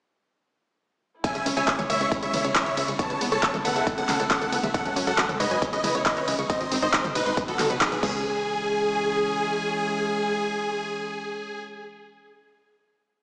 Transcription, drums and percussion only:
1.24 kick, closed hi-hat, ride
1.35 closed hi-hat
1.46 open hi-hat, ride
1.57 closed hi-hat
1.68 kick, clap, closed hi-hat, ride
1.79 closed hi-hat, mid tom
1.90 open hi-hat, ride
2.01 closed hi-hat
2.12 kick, closed hi-hat, ride
2.23 closed hi-hat
2.34 open hi-hat, mid tom, ride
2.45 closed hi-hat
2.55 kick, clap, closed hi-hat, ride
2.66 closed hi-hat
2.77 open hi-hat, ride
2.88 closed hi-hat
2.99 kick, closed hi-hat, ride
3.10 closed hi-hat
3.21 open hi-hat, ride
3.32 closed hi-hat
3.43 kick, clap, closed hi-hat, ride
3.54 closed hi-hat, mid tom
3.65 open hi-hat, ride
3.76 closed hi-hat
3.87 kick, closed hi-hat, ride
3.98 closed hi-hat
4.09 clap, open hi-hat, mid tom, ride
4.20 closed hi-hat
4.31 kick, clap, closed hi-hat, ride
4.42 closed hi-hat
4.53 open hi-hat, ride
4.64 closed hi-hat, mid tom
4.74 kick, closed hi-hat, ride
4.85 closed hi-hat
4.96 open hi-hat, ride
5.07 closed hi-hat
5.18 kick, clap, closed hi-hat, ride
5.29 closed hi-hat, mid tom
5.40 open hi-hat, ride
5.51 closed hi-hat
5.62 kick, closed hi-hat, ride
5.73 closed hi-hat
5.84 open hi-hat, mid tom, ride
5.95 closed hi-hat
6.06 kick, clap, closed hi-hat, ride
6.17 closed hi-hat
6.28 open hi-hat, ride
6.39 closed hi-hat
6.50 kick, closed hi-hat, ride
6.61 closed hi-hat
6.72 open hi-hat, ride
6.83 closed hi-hat
6.93 kick, clap, closed hi-hat, ride
7.04 closed hi-hat, mid tom
7.15 open hi-hat, ride
7.26 closed hi-hat
7.37 kick, closed hi-hat, ride
7.48 closed hi-hat
7.59 clap, open hi-hat, mid tom, ride
7.70 closed hi-hat
7.81 kick, clap, closed hi-hat, ride
7.92 closed hi-hat
8.03 kick, crash

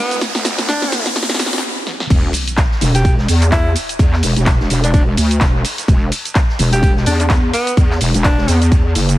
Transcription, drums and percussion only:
0.11 snare, closed hi-hat, shaker
0.21 kick, snare, closed hi-hat, ride, shaker
0.35 snare, shaker
0.45 snare, open hi-hat, ride, shaker
0.58 snare, closed hi-hat, shaker
0.69 kick, snare, closed hi-hat, ride, shaker
0.82 snare, shaker
0.92 snare, open hi-hat, ride, shaker
1.06 snare, closed hi-hat, shaker
1.15 kick, snare, closed hi-hat, ride, shaker
1.23 snare
1.29 snare, ride, shaker
1.34 snare
1.39 snare, open hi-hat, ride, shaker
1.46 snare
1.53 snare, closed hi-hat, shaker
1.58 snare
1.87 snare
2.00 snare
2.10 kick, closed hi-hat, crash, ride, shaker
2.33 open hi-hat, ride, shaker
2.48 closed hi-hat, shaker
2.57 kick, snare, clap, closed hi-hat, ride, shaker
2.71 snare
2.81 open hi-hat, ride, shaker
2.95 snare, closed hi-hat, shaker
3.05 kick, closed hi-hat, ride, shaker
3.18 snare
3.28 snare, open hi-hat, ride, shaker
3.42 clap, closed hi-hat, shaker
3.52 kick, snare, clap, closed hi-hat, ride, shaker
3.75 open hi-hat, ride, shaker
3.89 closed hi-hat, shaker
3.99 kick, closed hi-hat, ride, shaker
4.13 snare, clap
4.23 open hi-hat, ride, shaker
4.36 snare, closed hi-hat, shaker
4.46 kick, snare, clap, closed hi-hat, ride, shaker
4.60 snare
4.70 open hi-hat, ride, shaker
4.84 closed hi-hat, shaker
4.94 kick, closed hi-hat, ride, shaker
5.17 open hi-hat, ride, shaker
5.31 closed hi-hat, shaker
5.41 kick, snare, clap, closed hi-hat, ride, shaker
5.64 open hi-hat, ride, shaker
5.78 snare, closed hi-hat, shaker
5.88 kick, closed hi-hat, ride, shaker
6.12 open hi-hat, ride, shaker
6.25 closed hi-hat, shaker
6.35 kick, snare, clap, closed hi-hat, ride, shaker
6.49 snare
6.59 open hi-hat, ride, shaker
6.72 snare, closed hi-hat, shaker
6.83 kick, closed hi-hat, ride, shaker
6.96 snare
7.06 snare, open hi-hat, ride, shaker
7.20 clap, closed hi-hat, shaker
7.30 kick, snare, clap, closed hi-hat, ride, shaker
7.53 open hi-hat, ride, shaker
7.67 closed hi-hat, shaker
7.77 kick, closed hi-hat, ride, shaker
7.91 snare, clap
8.01 open hi-hat, ride, shaker
8.14 snare, closed hi-hat, shaker
8.24 kick, snare, clap, closed hi-hat, ride, shaker
8.38 snare
8.48 open hi-hat, ride, shaker
8.62 closed hi-hat, shaker
8.72 kick, closed hi-hat, ride, shaker
8.95 open hi-hat, ride, shaker
9.09 closed hi-hat, shaker

